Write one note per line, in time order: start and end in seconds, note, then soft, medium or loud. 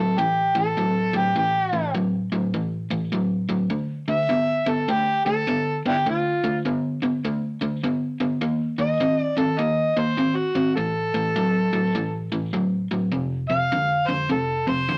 0.00 0.17 A2 medium
0.00 0.17 F#3 medium
0.00 0.21 A4 medium
0.18 0.52 A2 medium
0.18 0.52 E3 medium
0.18 0.56 G4 medium
0.55 0.75 A2 medium
0.55 0.75 E3 medium
0.55 1.18 A4 medium
0.77 1.11 A2 medium
0.77 1.11 F#3 medium
1.13 1.34 A2 medium
1.13 1.34 F#3 medium
1.13 1.37 G4 medium
1.36 1.70 A2 medium
1.36 1.70 E3 medium
1.36 1.92 G4 medium
1.73 1.93 A2 medium
1.73 1.93 E3 medium
1.95 2.29 A2 medium
1.95 2.29 F#3 medium
2.32 2.52 A2 medium
2.32 2.52 F#3 medium
2.54 2.88 A2 medium
2.54 2.88 E3 medium
2.91 3.11 A2 medium
2.91 3.11 E3 medium
3.12 3.46 A2 medium
3.12 3.47 F#3 medium
3.49 3.69 A2 medium
3.49 3.69 F#3 medium
3.70 4.05 D3 medium
3.70 4.05 A3 medium
4.08 4.28 D3 medium
4.08 4.28 A3 medium
4.08 4.71 E5 loud
4.29 4.63 D3 medium
4.29 4.64 B3 medium
4.66 4.87 D3 medium
4.66 4.87 B3 medium
4.66 4.92 A4 medium
4.88 5.23 D3 medium
4.88 5.23 A3 medium
4.88 5.25 G4 medium
5.26 5.46 D3 medium
5.26 5.46 A3 medium
5.26 5.81 A4 medium
5.47 5.81 D3 medium
5.47 5.82 B3 medium
5.86 6.05 D3 medium
5.86 6.05 B3 medium
5.86 5.94 D4 medium
5.86 5.96 E4 medium
5.86 6.07 G4 medium
6.06 6.40 D3 medium
6.06 6.40 A3 medium
6.06 6.63 F4 medium
6.44 6.64 D3 medium
6.44 6.64 A3 medium
6.65 6.99 D3 medium
6.65 6.99 B3 medium
7.02 7.22 D3 medium
7.02 7.23 B3 medium
7.25 7.58 D3 medium
7.25 7.58 A3 medium
7.61 7.81 D3 medium
7.61 7.82 A3 medium
7.84 8.17 D3 medium
7.84 8.17 B3 medium
8.20 8.40 D3 medium
8.20 8.40 B3 medium
8.41 8.75 D#3 medium
8.41 8.76 A#3 medium
8.78 8.98 D#3 medium
8.78 8.99 A#3 medium
8.78 9.20 D#5 loud
9.00 9.34 D#3 medium
9.00 9.34 C4 medium
9.20 9.35 D5 loud
9.37 9.57 D#3 medium
9.37 9.58 C4 medium
9.37 9.60 A4 medium
9.59 9.93 D#3 medium
9.59 9.93 A#3 medium
9.59 9.99 D#5 medium
9.97 10.16 D#3 medium
9.97 10.17 A#3 medium
9.97 10.38 C5 medium
10.17 10.51 D#3 medium
10.17 10.52 C4 medium
10.36 10.75 F#4 medium
10.55 10.75 D#3 medium
10.55 10.75 C4 medium
10.76 11.11 A2 medium
10.76 11.11 E3 medium
10.76 12.49 A4 medium
11.14 11.34 A2 medium
11.14 11.34 E3 medium
11.36 11.69 A2 medium
11.36 11.70 F#3 medium
11.73 11.93 A2 medium
11.73 11.93 F#3 medium
11.95 12.28 A2 medium
11.95 12.29 E3 medium
12.32 12.51 A2 medium
12.32 12.52 E3 medium
12.53 12.87 A2 medium
12.53 12.87 F#3 medium
12.91 13.10 A2 medium
12.91 13.11 F#3 medium
13.12 13.46 F2 medium
13.12 13.46 C3 medium
13.49 13.69 F2 medium
13.49 13.69 C3 medium
13.49 14.09 F5 loud
13.72 14.05 F2 medium
13.72 14.05 D3 medium
14.07 14.28 F2 medium
14.07 14.28 D3 medium
14.07 14.29 C5 medium
14.29 14.63 F2 medium
14.29 14.63 C3 medium
14.29 14.65 A4 medium
14.67 14.86 F2 medium
14.67 14.87 C3 medium
14.67 14.98 C5 medium
14.89 14.98 F2 medium
14.89 14.98 D3 medium